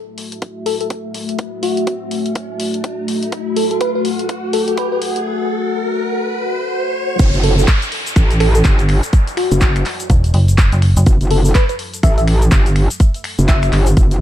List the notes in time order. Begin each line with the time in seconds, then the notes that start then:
Already playing: A3 F#4 E5, riser
0.18 open hi-hat
0.32 closed hi-hat
0.42 kick, closed hi-hat
0.66 A4, open hi-hat
0.81 A4, closed hi-hat
0.90 kick, closed hi-hat
1.14 open hi-hat
1.29 closed hi-hat
1.39 kick, closed hi-hat
1.63 F#4, open hi-hat
1.77 closed hi-hat
1.87 kick, closed hi-hat
2.11 open hi-hat
2.26 closed hi-hat
2.35 kick, closed hi-hat
2.60 open hi-hat
2.74 closed hi-hat
2.84 kick, closed hi-hat
3.08 open hi-hat
3.23 closed hi-hat
3.32 F#5, kick, closed hi-hat
3.56 A4, open hi-hat
3.71 A4, closed hi-hat
3.81 B4, kick, closed hi-hat
3.95 B4
4.05 open hi-hat
4.19 closed hi-hat
4.29 kick, closed hi-hat
4.53 A4, open hi-hat
4.68 A4, closed hi-hat
4.77 B4, kick, closed hi-hat
4.92 B4
5.02 open hi-hat
5.16 closed hi-hat
7.19 F#1 F#3 E4 A4, kick, closed hi-hat, crash, downlifter, shaker
7.34 F#1, closed hi-hat, shaker
7.44 A4, open hi-hat
7.58 A4, shaker
7.68 kick, clap, closed hi-hat, shaker
7.82 closed hi-hat, shaker
7.92 open hi-hat
8.06 closed hi-hat, shaker
8.16 A1, finger snap, kick, closed hi-hat, shaker
8.30 closed hi-hat, shaker
8.40 A4, finger snap, open hi-hat
8.55 A4, closed hi-hat, shaker
8.64 G1, kick, clap, closed hi-hat, shaker
8.79 closed hi-hat, shaker
8.89 finger snap, open hi-hat
9.03 closed hi-hat, shaker
9.13 kick, closed hi-hat, shaker
9.27 closed hi-hat, shaker
9.37 F#4, finger snap, open hi-hat
9.52 F#1, closed hi-hat, shaker
9.61 kick, clap, closed hi-hat, shaker
9.76 finger snap, closed hi-hat, shaker
9.86 clap, open hi-hat
10.00 closed hi-hat, shaker
10.10 E1, kick, closed hi-hat, shaker
10.24 closed hi-hat, shaker
10.34 F#1, open hi-hat
10.48 closed hi-hat, shaker
10.58 kick, clap, closed hi-hat, shaker
10.72 F#1, closed hi-hat, shaker
10.82 finger snap, open hi-hat
10.97 F#1, closed hi-hat, shaker
11.06 F#1, kick, closed hi-hat, shaker
11.21 F#1, closed hi-hat, shaker
11.31 A4, open hi-hat
11.45 A4, shaker
11.55 B4, kick, clap, closed hi-hat, shaker
11.69 B4, closed hi-hat, shaker
11.79 open hi-hat
11.94 closed hi-hat, shaker
12.03 A1 E5, finger snap, kick, closed hi-hat, shaker
12.18 E5, closed hi-hat, shaker
12.28 finger snap, open hi-hat
12.42 closed hi-hat, shaker
12.51 G1, kick, clap, closed hi-hat, shaker
12.66 closed hi-hat, shaker
12.76 finger snap, open hi-hat
12.90 closed hi-hat, shaker
13.00 kick, closed hi-hat, shaker
13.14 closed hi-hat, shaker
13.24 finger snap, open hi-hat
13.39 F#1, closed hi-hat, shaker
13.48 E5, kick, clap, closed hi-hat, shaker
13.63 finger snap, closed hi-hat, shaker
13.73 G1, clap, open hi-hat
13.86 closed hi-hat, shaker
13.97 F#1, kick, closed hi-hat, shaker
14.11 closed hi-hat, shaker